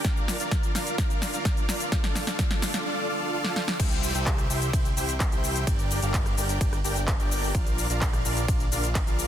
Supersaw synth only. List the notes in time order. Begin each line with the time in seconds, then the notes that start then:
0.05 A#4
0.40 D4 F4 A#4 D5 F5
0.75 D4 F4 A#4 D5 F5
1.33 D4 F4 A#4 D5 F5
1.69 D4 F4 A#4 D5 F5
1.92 D4 F4 D5 F5
2.27 D4 F4 A4 D5 F5
2.39 D4 F4 A4 D5 F5
2.74 D4 F4 A4 D5 F5
2.86 D4 F4 A4 D5 F5
3.09 D4 F4 A4 D5 F5
3.33 D4 F4 A4 D5 F5
3.56 D4 F4 A4 D5 F5
3.80 E4 G4 C5 E5 G5
4.15 E4 G4 C5 E5 G5
4.50 E4 G4 C5 E5 G5
4.73 E4 G4 E5 G5
4.97 E4 G4 C5 E5 G5
5.32 E4 G4 C5 E5 G5
5.67 D4
6.02 D4 G4 A#4 D5 F5
6.37 D4 G4 A#4 D5 G5
6.61 G4
6.84 D4 G4 A#4 D5 G5
7.20 D4 G4 A#4 D5 G5
7.55 D4 F4 A#4 D5
7.90 D4 F4 A#4 D5 F5
8.25 D4 F4 A#4 D5 F5
8.48 F4 F5
8.72 D4 F4 A#4 D5 F5
9.07 D4 F4 A#4 D5 F5